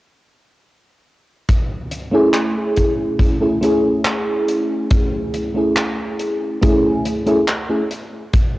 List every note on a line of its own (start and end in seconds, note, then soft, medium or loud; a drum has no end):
1.49 kick loud
1.49 closed hi-hat medium
1.91 closed hi-hat medium
2.11 3.35 A3 medium
2.11 3.36 C#4 medium
2.11 3.36 E4 medium
2.11 3.37 G#4 loud
2.33 clap loud
2.33 closed hi-hat medium
2.76 kick medium
2.76 closed hi-hat medium
3.19 kick loud
3.19 closed hi-hat medium
3.40 3.57 A3 medium
3.40 3.57 C#4 medium
3.40 3.58 E4 medium
3.40 3.58 G#4 medium
3.61 5.50 A3 medium
3.61 5.50 C#4 medium
3.61 5.50 E4 medium
3.61 5.51 G#4 loud
3.61 closed hi-hat medium
4.05 clap loud
4.05 closed hi-hat medium
4.49 closed hi-hat medium
4.91 kick loud
4.91 closed hi-hat medium
5.34 closed hi-hat medium
5.54 6.57 A3 medium
5.54 6.57 C#4 medium
5.54 6.58 E4 medium
5.54 6.58 G#4 medium
5.76 clap loud
5.76 closed hi-hat medium
6.19 closed hi-hat medium
6.61 7.21 A3 loud
6.61 7.21 C#4 medium
6.61 7.22 E4 medium
6.61 7.22 G#4 loud
6.61 kick loud
6.61 closed hi-hat medium
7.05 closed hi-hat medium
7.26 7.38 A3 medium
7.26 7.38 C#4 medium
7.26 7.38 E4 medium
7.26 7.39 G#4 loud
7.26 closed hi-hat soft
7.48 clap loud
7.48 closed hi-hat medium
7.69 7.81 A3 medium
7.69 7.81 C#4 medium
7.69 7.81 E4 medium
7.69 7.82 G#4 medium
7.91 closed hi-hat medium
8.33 kick loud
8.33 closed hi-hat medium